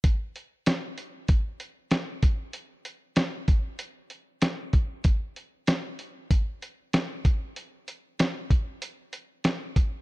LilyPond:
\new DrumStaff \with { instrumentName = "Drums" } \drummode { \time 4/4 \tempo 4 = 96 <hh bd>8 hh8 <hh sn>8 hh8 <hh bd>8 hh8 <hh sn>8 <hh bd>8 | hh8 hh8 <hh sn>8 <hh bd>8 hh8 hh8 <hh sn>8 <hh bd>8 | <hh bd>8 hh8 <hh sn>8 hh8 <hh bd>8 hh8 <hh sn>8 <hh bd>8 | hh8 hh8 <hh sn>8 <hh bd>8 hh8 hh8 <hh sn>8 <hh bd>8 | }